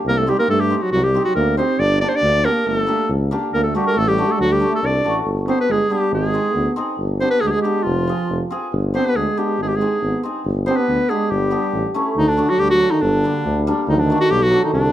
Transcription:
0.05 C2 A#3 A#4
0.18 A3 A4
0.27 G3 C4 D#4 G4
0.39 A#3 A#4
0.48 G2 A3 A4
0.60 G4
0.70 C4 D#4 G4
0.77 G4
0.82 F#3 F#4
0.92 C2 F#3 F#4
1.03 G3 G4
1.15 C4 D#4 G4
1.24 F#3 F#4
1.35 D2 A#3 A#4
1.57 C4 D#4 G4 C5
1.79 G1 D4 D5
2.01 A#3 D4 G4 D5
2.08 C5
2.15 D4 D5
2.22 D2
2.44 A#3 D4 G4 A#4
2.65 G1 A3 A4
2.87 A3 A#3 D4 G4
3.09 C#2
3.31 A#3 D4 G4
3.53 D2 A#3 A#4
3.63 A3 A4
3.75 G3 A3 D4 F#4 G4
3.87 A#4
3.96 A1 A3 A4
4.07 G3 G4
4.18 A3 D4 F#4
4.29 A3 A4
4.40 D2 F#3 F#4
4.51 G3 G4
4.60 A3 D4 A4
4.70 A3
4.75 A4
4.82 C2 D4 D5
5.04 A1 A3 D4 F#4
5.26 G1
5.48 B3 C4 D4 G4 C5
5.58 B3 B4
5.69 G1 G#3 G#4
5.89 G3 B3 D4 G4
6.11 G#1 G#3 G#4
6.34 C4 D#4 G#4
6.55 D2 B3
6.76 C4 D#4 G#4
6.99 G1
7.19 B3 C4 D4 G4 C5
7.30 B3 B4
7.41 D2 G#3 G#4
7.47 G4 G#4
7.53 G#3
7.62 B3 D4 G4
7.83 F1 F3 F4
8.07 C4 F4 G#4
8.29 F1
8.51 C4 F4 G#4
8.73 G1
8.94 B3 C4 D4 G4 C5
9.06 B3 B4
9.15 D2 G#3 G#4
9.37 B3 D4 G4
9.59 G#1 G#3 G#4
9.68 G4
9.76 G#3 G#4
9.81 C4 D#4 G#4
10.02 G#1 B3
10.23 C4 D#4 G#4
10.44 G1
10.66 B3 C4 D4 G4 C5
10.76 B3 B4
10.88 D2
11.09 G#3 B3 D4 G4 G#4
11.30 G1 G3 G4
11.51 B3 D4 G4
11.73 A1
11.94 A3 C#4 E4
12.16 D2 D#3 D#4
12.28 D3 D4
12.37 F#3 A3 D4
12.49 F#3 F#4
12.58 D2 G3 G4
12.70 F#3 F#4
12.80 F#3 A3 D4
12.91 D#3 D#4
13.01 G1 D3 D4
13.24 G3 A#3 D4
13.46 D2
13.67 G3 A#3 D4
13.88 D2 D#3 D#4
13.96 F#3 D4
14.02 D#3
14.10 F#3 A3 D4
14.21 F#4
14.30 B1 G3 G4
14.42 F#3 F#4
14.51 F#3 A3 D4
14.64 D#3 D#4
14.73 C2 D3 D4

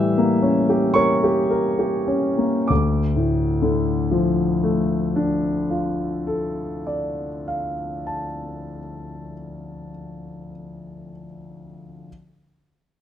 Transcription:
Already playing: A2 E3 G3 E5 E6
0.18 A#3
0.42 C#4
0.69 G4
0.94 A#4 C#5 C#6
1.24 G4
1.50 A#4
1.79 G4
2.08 C#4
2.38 A#3
2.68 D2 D6
3.15 A2
3.62 D3
4.11 F3
4.63 A3
5.16 D4
5.70 F4
6.27 A4
6.87 D5
7.48 F5
8.07 A5

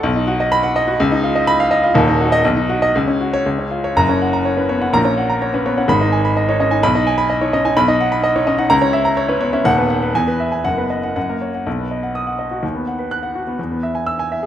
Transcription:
0.03 B1
0.16 D#4
0.27 F#4
0.40 D#5
0.52 B5
0.63 F#5
0.76 D#5
0.87 F#4
1.00 C#2
1.11 D#4
1.24 F4
1.36 D#5
1.47 B5
1.60 F5
1.71 D#5
1.84 F4
1.94 D#1 D#2
2.07 D#4
2.21 F#4
2.32 D#5
2.45 B1
2.57 D#4
2.69 F#4
2.82 D#5
2.95 C#2
3.08 C#4
3.21 F#4
3.34 C#5
3.46 C#2
3.59 C#4
3.71 F4
3.84 C#5
3.96 F#1 F#2 A#5
4.09 C#4 C#5
4.22 F#5
4.33 A#5
4.45 C#5
4.57 C#4 B4
4.69 B3 C#5
4.81 C#4 F#5
4.93 A#1 A#2 A#5
5.05 C#4 C#5
5.18 F#5
5.30 A#5
5.42 C#5
5.54 C#4 B4
5.66 B3 C#5
5.78 C#4 F#5
5.88 G#1 G#2 B5
6.01 D#4 D#5
6.12 G#5
6.25 B5
6.37 D#5
6.49 D#4 C#5
6.60 C#4 D#5
6.71 D#4 G#5
6.83 B1 B5
6.95 D#4 D#5
7.07 G#5
7.18 B5
7.30 D#5
7.41 D#4 C#5
7.53 C#4 D#5
7.65 D#4 G#5
7.76 B1 B5
7.88 D#4 D#5
8.01 F#5
8.12 B5
8.23 D#5
8.36 D#4 C#5
8.47 C#4 D#5
8.58 D#4 F#5
8.70 C#2 A#5
8.82 C#4 C#5
8.93 E5
9.05 A#5
9.17 C#5
9.29 C#4 B4
9.40 B3 C#5
9.53 C#4 E5
9.64 D#1 D#2 F#5
9.78 B3 B4
9.90 F#5
10.02 B4
10.15 E2 G#5
10.27 B3 B4
10.40 E5
10.52 G#5
10.63 F#1 F#2 F#5
10.78 B3 B4
10.90 D#5
11.03 F#5
11.16 F#2 F#5
11.29 A#3 A#4
11.42 C#5
11.55 F#5
11.66 B1
11.79 B3
11.91 D#5
12.03 F#5
12.15 D#6
12.27 F#5
12.39 D#5
12.51 F#4
12.63 D#2
12.75 B3
12.87 F#5
12.99 B4
13.11 F#6
13.23 F#5
13.35 F#4
13.47 B3
13.59 E2
13.72 B3
13.83 E5
13.95 G#5
14.07 E6
14.19 G#5
14.32 E5
14.43 G#4

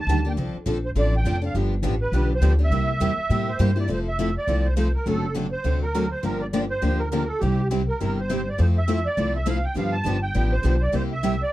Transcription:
0.00 A5
0.07 D2 D#3 G3 A#3 D4 G4
0.25 A#3 D4 G4 G5
0.37 C2 F3 C4 D4 A4
0.54 muted upright bass stroke
0.66 A#1 F3 C4 D4 A4
0.85 C5
0.95 A1 F3 C4 D4 A4 D5
1.16 G5
1.25 F1 F3 C4 D4 A4
1.42 C4 D4 A4
1.46 F5
1.54 G1 D3 F3 B3 D4 G4
1.83 A1 D3 F3 B3 D4 G4
2.01 B4
2.12 B1 D3 F3 B3 D4 G4
2.35 C5
2.41 D2 D3 F3 B3 D4 G4
2.59 B3 D4 G4
2.64 E5
2.70 C2 C3 G3 A#3 E4 G4
3.00 E2 C3 G3 A#3 E4 G4
3.17 muted upright bass stroke
3.30 A2 C3 G3 A#3 E4 G4
3.49 C5
3.59 G2 C3 G3 A#3 E4 G4
3.76 A#3 E4 G4 D5
3.88 F1 F3 A3 C4 E4 A4
3.92 C5
4.08 E5
4.19 F3 A3 C4 E4 A4
4.38 D5
4.47 C2 F3 A3 C4 E4 A4
4.66 C5
4.76 F3 A3 C4 E4 A4 C5
4.95 A#4
5.06 F#1 C3 F#3 A3 C4 D4 F#4 A4
5.35 C3 F#3 A3 C4 D4 F#4 A4
5.52 C5
5.64 D2 C3 F#3 A3 C4 D4 F#4 A4
5.83 A#4
5.94 C3 F#3 A3 C4 D4 F#4 A4
6.11 C5
6.23 G1 D3 F3 A#3 D4 G4 A#4
6.41 D5
6.53 D3 F3 A#3 D4 G4 D5
6.70 C5
6.82 D2 D3 F3 A#3 D4 G4
6.99 A#4
7.10 D3 F3 A#3 D4 G4 A#4
7.28 A4
7.40 C2 C3 G3 C4 E4 G4
7.71 C3 G3 C4 E4 G4
7.88 A#4
8.00 G1 C3 G3 C4 E4 G4 A#4
8.20 C5
8.29 C3 G3 C4 E4 G4
8.49 D5
8.58 F2 F3 A3 C4 E4 A4 C5
8.78 E5
8.88 F3 A3 C4 E4 A4
9.06 D5
9.17 C2 F3 A3 C4 E4 A4
9.36 E5
9.46 F3 A3 C4 E4 A4 F5
9.64 G5
9.75 G2 D3 F3 B3 D4 G4 F5
9.92 A5
10.05 G1 D3 F3 B3 D4 G4
10.23 G5
10.34 A1 D3 F3 B3 D4 G4
10.52 C5
10.64 B1 D3 F3 B3 D4 G4
10.82 D5
10.92 C2 C3 G3 A#3 E4 G4 C5
11.13 E5
11.23 C3 G3 A#3 E4 G4
11.43 D5

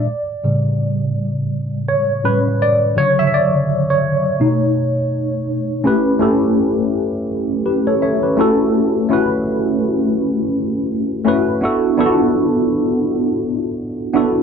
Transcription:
Already playing: D5
0.44 A2 C#3 G3
1.88 C#5
2.24 A2 G3 C#4 B4
2.62 D5
2.96 C#3 D3 F#3 C#5
3.19 E5
3.27 E5
3.34 D5
3.90 C#5
4.40 B2 A3 D#4
5.84 A3 C#4 E4 G4 B4
6.19 A3 C#4 E4 G4 A4
7.66 G4 B4
7.87 A4 C#5
8.02 C#5 E5
8.23 G4 B4
8.37 A3 C#4 E4 F#4 A4
9.09 A3 C#4 E4 F#4
9.13 B4
11.24 A3 C#4 E4 F#4 B4
11.61 B3 D4 E4 F#4
11.65 A4
11.97 B3 D4 E4 F4 A4
12.06 F#4
14.13 B3 D4 E4 F#4 A4

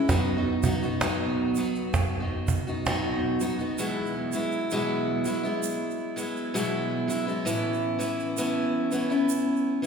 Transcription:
Already playing: C#4
0.09 B2 F#3 B3 D#4 F#4, cajon bass, cajon slap, shaker
0.37 B3 D#4 F#4
0.63 F#3 B3 D#4 F#4, cajon bass, shaker
0.82 B3 D#4 F#4, shaker
1.01 B2 F#3 B3 D#4 F#4, cajon slap, shaker
1.55 F#3 B3 D#4 F#4, cajon slap, shaker
1.75 shaker
1.94 cajon bass, cajon slap, shaker
2.20 B3 D#4 F#4
2.48 cajon bass, shaker
2.67 B3 D#4 F#4, shaker
2.86 B2 F#3 B3 D#4 F#4, cajon slap, shaker
3.40 F#3 B3 D#4 F#4, cajon slap, shaker
3.59 B3 D#4 F#4, cajon slap, shaker
3.78 E2 B2 F#3 G#3 B3 E4, shaker
4.06 shaker
4.32 F#3 G#3 B3 E4, shaker
4.52 shaker
4.71 E2 B2 F#3 G#3 B3 E4, shaker
5.25 F#3 G#3 B3 E4, shaker
5.43 F#3 G#3 B3 E4, shaker
5.63 shaker
5.91 shaker
6.16 F#3 G#3 B3 E4, shaker
6.36 shaker
6.54 E2 B2 F#3 G#3 B3 E4, shaker
7.08 F#3 G#3 B3 E4, shaker
7.27 F#3 G#3 B3 E4, shaker
7.45 A2 E3 B3 C#4 E4, shaker
7.74 shaker
7.99 E3 B3 C#4 E4, shaker
8.19 shaker
8.37 A2 E3 B3 C#4 E4, shaker
8.92 E3 B3 C#4 E4, shaker
9.10 B3 C#4 E4, shaker
9.29 shaker
9.56 shaker
9.82 E3 B3

